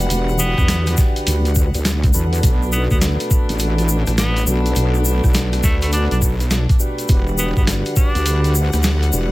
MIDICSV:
0, 0, Header, 1, 6, 480
1, 0, Start_track
1, 0, Key_signature, 1, "minor"
1, 0, Tempo, 582524
1, 85, Time_signature, 4, 2, 24, 8
1, 7677, End_track
2, 0, Start_track
2, 0, Title_t, "Tonewheel organ"
2, 0, Program_c, 0, 16
2, 0, Note_on_c, 0, 62, 95
2, 0, Note_on_c, 0, 66, 88
2, 0, Note_on_c, 0, 67, 85
2, 0, Note_on_c, 0, 71, 107
2, 1401, Note_off_c, 0, 62, 0
2, 1401, Note_off_c, 0, 66, 0
2, 1401, Note_off_c, 0, 67, 0
2, 1401, Note_off_c, 0, 71, 0
2, 1439, Note_on_c, 0, 62, 79
2, 1439, Note_on_c, 0, 66, 73
2, 1439, Note_on_c, 0, 67, 70
2, 1439, Note_on_c, 0, 71, 90
2, 1481, Note_off_c, 0, 62, 0
2, 1481, Note_off_c, 0, 66, 0
2, 1481, Note_off_c, 0, 67, 0
2, 1481, Note_off_c, 0, 71, 0
2, 1766, Note_on_c, 0, 62, 96
2, 1766, Note_on_c, 0, 69, 92
2, 1766, Note_on_c, 0, 71, 110
2, 1767, Note_on_c, 0, 66, 87
2, 3322, Note_off_c, 0, 62, 0
2, 3322, Note_off_c, 0, 66, 0
2, 3322, Note_off_c, 0, 69, 0
2, 3322, Note_off_c, 0, 71, 0
2, 3356, Note_on_c, 0, 69, 75
2, 3357, Note_on_c, 0, 62, 80
2, 3357, Note_on_c, 0, 66, 69
2, 3357, Note_on_c, 0, 71, 89
2, 3400, Note_off_c, 0, 62, 0
2, 3400, Note_off_c, 0, 66, 0
2, 3400, Note_off_c, 0, 69, 0
2, 3400, Note_off_c, 0, 71, 0
2, 3682, Note_on_c, 0, 62, 98
2, 3682, Note_on_c, 0, 66, 90
2, 3682, Note_on_c, 0, 69, 86
2, 3682, Note_on_c, 0, 71, 104
2, 5240, Note_off_c, 0, 62, 0
2, 5240, Note_off_c, 0, 66, 0
2, 5240, Note_off_c, 0, 69, 0
2, 5240, Note_off_c, 0, 71, 0
2, 5275, Note_on_c, 0, 62, 82
2, 5275, Note_on_c, 0, 66, 71
2, 5275, Note_on_c, 0, 69, 70
2, 5275, Note_on_c, 0, 71, 87
2, 5319, Note_off_c, 0, 62, 0
2, 5319, Note_off_c, 0, 66, 0
2, 5319, Note_off_c, 0, 69, 0
2, 5319, Note_off_c, 0, 71, 0
2, 5601, Note_on_c, 0, 62, 90
2, 5602, Note_on_c, 0, 66, 85
2, 5602, Note_on_c, 0, 67, 86
2, 5602, Note_on_c, 0, 71, 106
2, 7159, Note_off_c, 0, 62, 0
2, 7160, Note_off_c, 0, 66, 0
2, 7160, Note_off_c, 0, 67, 0
2, 7160, Note_off_c, 0, 71, 0
2, 7197, Note_on_c, 0, 62, 80
2, 7197, Note_on_c, 0, 66, 69
2, 7197, Note_on_c, 0, 67, 73
2, 7198, Note_on_c, 0, 71, 89
2, 7240, Note_off_c, 0, 62, 0
2, 7240, Note_off_c, 0, 66, 0
2, 7240, Note_off_c, 0, 67, 0
2, 7241, Note_off_c, 0, 71, 0
2, 7523, Note_on_c, 0, 62, 96
2, 7523, Note_on_c, 0, 66, 88
2, 7523, Note_on_c, 0, 67, 88
2, 7523, Note_on_c, 0, 71, 103
2, 7677, Note_off_c, 0, 62, 0
2, 7677, Note_off_c, 0, 66, 0
2, 7677, Note_off_c, 0, 67, 0
2, 7677, Note_off_c, 0, 71, 0
2, 7677, End_track
3, 0, Start_track
3, 0, Title_t, "Tenor saxophone"
3, 0, Program_c, 1, 66
3, 322, Note_on_c, 1, 59, 101
3, 804, Note_off_c, 1, 59, 0
3, 2245, Note_on_c, 1, 59, 95
3, 2343, Note_off_c, 1, 59, 0
3, 2397, Note_on_c, 1, 59, 80
3, 2453, Note_off_c, 1, 59, 0
3, 3447, Note_on_c, 1, 59, 98
3, 3655, Note_off_c, 1, 59, 0
3, 4645, Note_on_c, 1, 57, 93
3, 4743, Note_off_c, 1, 57, 0
3, 4796, Note_on_c, 1, 57, 79
3, 4853, Note_off_c, 1, 57, 0
3, 4883, Note_on_c, 1, 62, 92
3, 4982, Note_off_c, 1, 62, 0
3, 5035, Note_on_c, 1, 62, 80
3, 5092, Note_off_c, 1, 62, 0
3, 6086, Note_on_c, 1, 59, 90
3, 6183, Note_off_c, 1, 59, 0
3, 6239, Note_on_c, 1, 59, 78
3, 6294, Note_off_c, 1, 59, 0
3, 6564, Note_on_c, 1, 62, 96
3, 7044, Note_off_c, 1, 62, 0
3, 7677, End_track
4, 0, Start_track
4, 0, Title_t, "String section"
4, 0, Program_c, 2, 48
4, 0, Note_on_c, 2, 50, 80
4, 0, Note_on_c, 2, 55, 72
4, 0, Note_on_c, 2, 78, 89
4, 1970, Note_off_c, 2, 78, 0
4, 1971, Note_off_c, 2, 50, 0
4, 1971, Note_off_c, 2, 55, 0
4, 2002, Note_on_c, 2, 47, 83
4, 2002, Note_on_c, 2, 57, 72
4, 2003, Note_on_c, 2, 62, 90
4, 5810, Note_off_c, 2, 47, 0
4, 5811, Note_off_c, 2, 57, 0
4, 5811, Note_off_c, 2, 62, 0
4, 5843, Note_on_c, 2, 78, 86
4, 5844, Note_on_c, 2, 50, 83
4, 5845, Note_on_c, 2, 55, 74
4, 7677, Note_off_c, 2, 50, 0
4, 7677, Note_off_c, 2, 55, 0
4, 7677, Note_off_c, 2, 78, 0
4, 7677, End_track
5, 0, Start_track
5, 0, Title_t, "Wobble bass"
5, 0, Program_c, 3, 39
5, 84, Note_on_c, 3, 28, 94
5, 453, Note_off_c, 3, 28, 0
5, 478, Note_on_c, 3, 40, 95
5, 791, Note_off_c, 3, 40, 0
5, 1046, Note_on_c, 3, 38, 101
5, 1414, Note_off_c, 3, 38, 0
5, 1439, Note_on_c, 3, 38, 97
5, 1751, Note_off_c, 3, 38, 0
5, 1766, Note_on_c, 3, 40, 100
5, 1992, Note_off_c, 3, 40, 0
5, 2005, Note_on_c, 3, 35, 95
5, 2373, Note_off_c, 3, 35, 0
5, 2397, Note_on_c, 3, 38, 95
5, 2613, Note_off_c, 3, 38, 0
5, 2878, Note_on_c, 3, 33, 97
5, 3334, Note_off_c, 3, 33, 0
5, 3357, Note_on_c, 3, 33, 98
5, 3671, Note_off_c, 3, 33, 0
5, 3681, Note_on_c, 3, 35, 96
5, 3909, Note_off_c, 3, 35, 0
5, 3921, Note_on_c, 3, 35, 89
5, 4291, Note_off_c, 3, 35, 0
5, 4317, Note_on_c, 3, 35, 100
5, 4631, Note_off_c, 3, 35, 0
5, 4642, Note_on_c, 3, 38, 95
5, 5012, Note_off_c, 3, 38, 0
5, 5037, Note_on_c, 3, 35, 90
5, 5493, Note_off_c, 3, 35, 0
5, 5842, Note_on_c, 3, 28, 95
5, 6212, Note_off_c, 3, 28, 0
5, 6235, Note_on_c, 3, 31, 92
5, 6452, Note_off_c, 3, 31, 0
5, 6716, Note_on_c, 3, 38, 91
5, 7173, Note_off_c, 3, 38, 0
5, 7197, Note_on_c, 3, 38, 95
5, 7511, Note_off_c, 3, 38, 0
5, 7525, Note_on_c, 3, 28, 100
5, 7677, Note_off_c, 3, 28, 0
5, 7677, End_track
6, 0, Start_track
6, 0, Title_t, "Drums"
6, 83, Note_on_c, 9, 42, 84
6, 87, Note_on_c, 9, 82, 54
6, 166, Note_off_c, 9, 42, 0
6, 169, Note_off_c, 9, 82, 0
6, 236, Note_on_c, 9, 82, 26
6, 319, Note_off_c, 9, 82, 0
6, 320, Note_on_c, 9, 82, 100
6, 402, Note_off_c, 9, 82, 0
6, 477, Note_on_c, 9, 37, 43
6, 478, Note_on_c, 9, 36, 69
6, 479, Note_on_c, 9, 82, 39
6, 559, Note_off_c, 9, 37, 0
6, 561, Note_off_c, 9, 36, 0
6, 561, Note_off_c, 9, 82, 0
6, 564, Note_on_c, 9, 38, 121
6, 564, Note_on_c, 9, 42, 89
6, 565, Note_on_c, 9, 82, 53
6, 646, Note_off_c, 9, 38, 0
6, 646, Note_off_c, 9, 42, 0
6, 648, Note_off_c, 9, 82, 0
6, 713, Note_on_c, 9, 82, 27
6, 718, Note_on_c, 9, 37, 39
6, 718, Note_on_c, 9, 42, 60
6, 796, Note_off_c, 9, 82, 0
6, 800, Note_off_c, 9, 37, 0
6, 800, Note_off_c, 9, 42, 0
6, 801, Note_on_c, 9, 82, 89
6, 805, Note_on_c, 9, 38, 66
6, 806, Note_on_c, 9, 36, 107
6, 884, Note_off_c, 9, 82, 0
6, 887, Note_off_c, 9, 38, 0
6, 888, Note_off_c, 9, 36, 0
6, 958, Note_on_c, 9, 42, 55
6, 960, Note_on_c, 9, 82, 35
6, 1040, Note_off_c, 9, 42, 0
6, 1042, Note_off_c, 9, 82, 0
6, 1044, Note_on_c, 9, 42, 83
6, 1049, Note_on_c, 9, 82, 59
6, 1126, Note_off_c, 9, 42, 0
6, 1132, Note_off_c, 9, 82, 0
6, 1197, Note_on_c, 9, 42, 40
6, 1202, Note_on_c, 9, 82, 28
6, 1279, Note_off_c, 9, 82, 0
6, 1279, Note_on_c, 9, 82, 94
6, 1280, Note_off_c, 9, 42, 0
6, 1285, Note_on_c, 9, 36, 65
6, 1362, Note_off_c, 9, 82, 0
6, 1368, Note_off_c, 9, 36, 0
6, 1435, Note_on_c, 9, 82, 39
6, 1438, Note_on_c, 9, 42, 41
6, 1518, Note_off_c, 9, 82, 0
6, 1520, Note_off_c, 9, 42, 0
6, 1523, Note_on_c, 9, 82, 48
6, 1525, Note_on_c, 9, 38, 124
6, 1525, Note_on_c, 9, 42, 85
6, 1606, Note_off_c, 9, 82, 0
6, 1607, Note_off_c, 9, 38, 0
6, 1607, Note_off_c, 9, 42, 0
6, 1677, Note_on_c, 9, 42, 41
6, 1679, Note_on_c, 9, 36, 101
6, 1681, Note_on_c, 9, 82, 28
6, 1759, Note_off_c, 9, 42, 0
6, 1759, Note_off_c, 9, 82, 0
6, 1759, Note_on_c, 9, 82, 99
6, 1761, Note_off_c, 9, 36, 0
6, 1842, Note_off_c, 9, 82, 0
6, 1917, Note_on_c, 9, 42, 38
6, 1926, Note_on_c, 9, 82, 37
6, 2000, Note_off_c, 9, 42, 0
6, 2004, Note_on_c, 9, 42, 78
6, 2005, Note_on_c, 9, 36, 125
6, 2006, Note_off_c, 9, 82, 0
6, 2006, Note_on_c, 9, 82, 64
6, 2087, Note_off_c, 9, 42, 0
6, 2088, Note_off_c, 9, 36, 0
6, 2088, Note_off_c, 9, 82, 0
6, 2163, Note_on_c, 9, 82, 25
6, 2244, Note_off_c, 9, 82, 0
6, 2244, Note_on_c, 9, 82, 94
6, 2326, Note_off_c, 9, 82, 0
6, 2396, Note_on_c, 9, 82, 41
6, 2398, Note_on_c, 9, 36, 70
6, 2478, Note_off_c, 9, 82, 0
6, 2480, Note_off_c, 9, 36, 0
6, 2484, Note_on_c, 9, 38, 126
6, 2484, Note_on_c, 9, 42, 86
6, 2484, Note_on_c, 9, 82, 60
6, 2567, Note_off_c, 9, 38, 0
6, 2567, Note_off_c, 9, 42, 0
6, 2567, Note_off_c, 9, 82, 0
6, 2638, Note_on_c, 9, 42, 58
6, 2639, Note_on_c, 9, 82, 29
6, 2721, Note_off_c, 9, 42, 0
6, 2722, Note_off_c, 9, 82, 0
6, 2725, Note_on_c, 9, 36, 105
6, 2726, Note_on_c, 9, 82, 93
6, 2807, Note_off_c, 9, 36, 0
6, 2809, Note_off_c, 9, 82, 0
6, 2877, Note_on_c, 9, 42, 57
6, 2881, Note_on_c, 9, 82, 42
6, 2957, Note_off_c, 9, 82, 0
6, 2957, Note_on_c, 9, 82, 55
6, 2960, Note_off_c, 9, 42, 0
6, 2964, Note_on_c, 9, 42, 80
6, 3039, Note_off_c, 9, 82, 0
6, 3047, Note_off_c, 9, 42, 0
6, 3118, Note_on_c, 9, 42, 40
6, 3120, Note_on_c, 9, 82, 25
6, 3200, Note_off_c, 9, 42, 0
6, 3202, Note_off_c, 9, 82, 0
6, 3203, Note_on_c, 9, 82, 93
6, 3285, Note_off_c, 9, 82, 0
6, 3350, Note_on_c, 9, 82, 41
6, 3357, Note_on_c, 9, 37, 51
6, 3357, Note_on_c, 9, 42, 39
6, 3432, Note_off_c, 9, 82, 0
6, 3439, Note_off_c, 9, 37, 0
6, 3439, Note_off_c, 9, 42, 0
6, 3444, Note_on_c, 9, 37, 38
6, 3444, Note_on_c, 9, 38, 127
6, 3444, Note_on_c, 9, 42, 84
6, 3444, Note_on_c, 9, 82, 56
6, 3526, Note_off_c, 9, 37, 0
6, 3526, Note_off_c, 9, 38, 0
6, 3526, Note_off_c, 9, 42, 0
6, 3526, Note_off_c, 9, 82, 0
6, 3597, Note_on_c, 9, 42, 39
6, 3603, Note_on_c, 9, 82, 31
6, 3680, Note_off_c, 9, 42, 0
6, 3683, Note_off_c, 9, 82, 0
6, 3683, Note_on_c, 9, 82, 97
6, 3765, Note_off_c, 9, 82, 0
6, 3838, Note_on_c, 9, 42, 39
6, 3840, Note_on_c, 9, 82, 39
6, 3920, Note_off_c, 9, 42, 0
6, 3920, Note_off_c, 9, 82, 0
6, 3920, Note_on_c, 9, 82, 59
6, 3923, Note_on_c, 9, 42, 74
6, 4002, Note_off_c, 9, 82, 0
6, 4006, Note_off_c, 9, 42, 0
6, 4074, Note_on_c, 9, 82, 28
6, 4156, Note_off_c, 9, 82, 0
6, 4160, Note_on_c, 9, 82, 96
6, 4242, Note_off_c, 9, 82, 0
6, 4317, Note_on_c, 9, 36, 70
6, 4317, Note_on_c, 9, 82, 38
6, 4318, Note_on_c, 9, 37, 38
6, 4397, Note_off_c, 9, 82, 0
6, 4397, Note_on_c, 9, 82, 55
6, 4399, Note_off_c, 9, 36, 0
6, 4400, Note_off_c, 9, 37, 0
6, 4405, Note_on_c, 9, 38, 127
6, 4405, Note_on_c, 9, 42, 83
6, 4479, Note_off_c, 9, 82, 0
6, 4488, Note_off_c, 9, 38, 0
6, 4488, Note_off_c, 9, 42, 0
6, 4553, Note_on_c, 9, 82, 25
6, 4557, Note_on_c, 9, 37, 36
6, 4557, Note_on_c, 9, 42, 56
6, 4636, Note_off_c, 9, 82, 0
6, 4639, Note_off_c, 9, 37, 0
6, 4639, Note_off_c, 9, 42, 0
6, 4643, Note_on_c, 9, 36, 107
6, 4643, Note_on_c, 9, 82, 97
6, 4644, Note_on_c, 9, 38, 69
6, 4725, Note_off_c, 9, 82, 0
6, 4726, Note_off_c, 9, 36, 0
6, 4727, Note_off_c, 9, 38, 0
6, 4794, Note_on_c, 9, 82, 38
6, 4798, Note_on_c, 9, 42, 55
6, 4876, Note_off_c, 9, 82, 0
6, 4880, Note_on_c, 9, 82, 54
6, 4881, Note_off_c, 9, 42, 0
6, 4884, Note_on_c, 9, 42, 77
6, 4962, Note_off_c, 9, 82, 0
6, 4966, Note_off_c, 9, 42, 0
6, 5037, Note_on_c, 9, 42, 35
6, 5039, Note_on_c, 9, 82, 27
6, 5120, Note_off_c, 9, 42, 0
6, 5122, Note_off_c, 9, 82, 0
6, 5123, Note_on_c, 9, 36, 69
6, 5125, Note_on_c, 9, 82, 101
6, 5206, Note_off_c, 9, 36, 0
6, 5208, Note_off_c, 9, 82, 0
6, 5275, Note_on_c, 9, 82, 44
6, 5277, Note_on_c, 9, 42, 37
6, 5357, Note_off_c, 9, 82, 0
6, 5359, Note_off_c, 9, 42, 0
6, 5361, Note_on_c, 9, 82, 57
6, 5362, Note_on_c, 9, 38, 125
6, 5362, Note_on_c, 9, 42, 82
6, 5444, Note_off_c, 9, 82, 0
6, 5445, Note_off_c, 9, 38, 0
6, 5445, Note_off_c, 9, 42, 0
6, 5516, Note_on_c, 9, 36, 109
6, 5516, Note_on_c, 9, 42, 36
6, 5522, Note_on_c, 9, 82, 27
6, 5598, Note_off_c, 9, 36, 0
6, 5598, Note_off_c, 9, 42, 0
6, 5600, Note_off_c, 9, 82, 0
6, 5600, Note_on_c, 9, 82, 89
6, 5683, Note_off_c, 9, 82, 0
6, 5755, Note_on_c, 9, 42, 34
6, 5758, Note_on_c, 9, 82, 43
6, 5836, Note_off_c, 9, 82, 0
6, 5836, Note_on_c, 9, 82, 51
6, 5838, Note_off_c, 9, 42, 0
6, 5842, Note_on_c, 9, 42, 73
6, 5843, Note_on_c, 9, 36, 120
6, 5918, Note_off_c, 9, 82, 0
6, 5925, Note_off_c, 9, 42, 0
6, 5926, Note_off_c, 9, 36, 0
6, 5993, Note_on_c, 9, 82, 28
6, 6075, Note_off_c, 9, 82, 0
6, 6081, Note_on_c, 9, 82, 97
6, 6164, Note_off_c, 9, 82, 0
6, 6235, Note_on_c, 9, 82, 40
6, 6236, Note_on_c, 9, 36, 67
6, 6317, Note_off_c, 9, 82, 0
6, 6318, Note_off_c, 9, 36, 0
6, 6323, Note_on_c, 9, 38, 126
6, 6323, Note_on_c, 9, 42, 81
6, 6329, Note_on_c, 9, 82, 53
6, 6405, Note_off_c, 9, 38, 0
6, 6405, Note_off_c, 9, 42, 0
6, 6412, Note_off_c, 9, 82, 0
6, 6472, Note_on_c, 9, 82, 26
6, 6477, Note_on_c, 9, 42, 51
6, 6554, Note_off_c, 9, 82, 0
6, 6559, Note_off_c, 9, 42, 0
6, 6562, Note_on_c, 9, 82, 94
6, 6563, Note_on_c, 9, 36, 105
6, 6644, Note_off_c, 9, 82, 0
6, 6646, Note_off_c, 9, 36, 0
6, 6717, Note_on_c, 9, 42, 51
6, 6722, Note_on_c, 9, 82, 35
6, 6800, Note_off_c, 9, 42, 0
6, 6803, Note_on_c, 9, 42, 77
6, 6805, Note_off_c, 9, 82, 0
6, 6806, Note_on_c, 9, 82, 56
6, 6886, Note_off_c, 9, 42, 0
6, 6888, Note_off_c, 9, 82, 0
6, 6957, Note_on_c, 9, 42, 36
6, 6960, Note_on_c, 9, 82, 25
6, 7040, Note_off_c, 9, 42, 0
6, 7042, Note_off_c, 9, 82, 0
6, 7045, Note_on_c, 9, 82, 86
6, 7127, Note_off_c, 9, 82, 0
6, 7192, Note_on_c, 9, 82, 41
6, 7197, Note_on_c, 9, 37, 54
6, 7197, Note_on_c, 9, 42, 36
6, 7274, Note_off_c, 9, 82, 0
6, 7275, Note_on_c, 9, 82, 59
6, 7280, Note_off_c, 9, 37, 0
6, 7280, Note_off_c, 9, 42, 0
6, 7285, Note_on_c, 9, 37, 36
6, 7285, Note_on_c, 9, 38, 126
6, 7285, Note_on_c, 9, 42, 81
6, 7357, Note_off_c, 9, 82, 0
6, 7367, Note_off_c, 9, 37, 0
6, 7367, Note_off_c, 9, 38, 0
6, 7367, Note_off_c, 9, 42, 0
6, 7438, Note_on_c, 9, 42, 36
6, 7438, Note_on_c, 9, 82, 25
6, 7521, Note_off_c, 9, 42, 0
6, 7521, Note_off_c, 9, 82, 0
6, 7522, Note_on_c, 9, 82, 93
6, 7604, Note_off_c, 9, 82, 0
6, 7677, End_track
0, 0, End_of_file